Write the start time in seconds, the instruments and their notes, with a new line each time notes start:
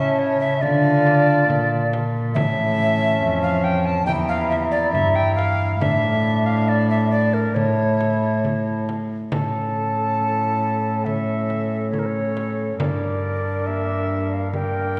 Already playing: harp A2 C#3 A3 C#4 E4, cello C#3, trombone C#4, flute A5
0.00 recorder E5
0.19 recorder C#5
0.40 recorder E5
0.60 cello D3, harp D3 A3 D4 F4, trombone F4, recorder D5, flute A5, frame drum
1.07 frame drum
1.49 harp A#2, cello A#2, frame drum
1.93 frame drum
2.32 harp A2 E3 A3 C#4, recorder E5, flute A5
2.36 cello A2, trombone C#4, frame drum
3.22 harp F2, cello F2
3.42 recorder F5
3.64 recorder G5
3.86 recorder A5
4.04 harp E2 A#3 G4, cello E2, recorder G5
4.08 trombone E4, flute A#5, frame drum
4.29 recorder F5
4.50 recorder E5, frame drum
4.71 recorder D5
4.93 cello G2, harp G2, recorder E5, frame drum
5.16 recorder G5
5.35 recorder F5, frame drum
5.78 cello A2, harp A3 D4 E4, trombone D4, recorder E5, flute A5, frame drum
5.82 harp A2
6.46 recorder F5
6.68 recorder D5
6.90 recorder E5
7.11 recorder D5
7.34 recorder A#4
7.51 harp A3 E4, recorder C#5
7.55 harp A2, cello A2, trombone E4, flute A5, frame drum
8.01 frame drum
8.45 frame drum
8.89 frame drum
9.32 harp A2, cello A2, trombone C#4, recorder A4, flute A5, frame drum
10.20 harp A3 C#4 E4
11.05 harp A3 C#4 E4, trombone C#4, recorder A4, flute E5, frame drum
11.50 frame drum
11.91 harp A3 C#4, trombone C#4, recorder A4, flute C#5, frame drum
11.97 harp E4, flute A#4
12.06 flute C#5
12.37 frame drum
12.79 cello G2, harp G2, trombone D4, recorder A#4, flute D5, frame drum
13.67 harp A#3 D4 G4, flute E5
14.34 flute F5
14.51 harp A#3 D4 G4, trombone D4, recorder A#4, flute G5, frame drum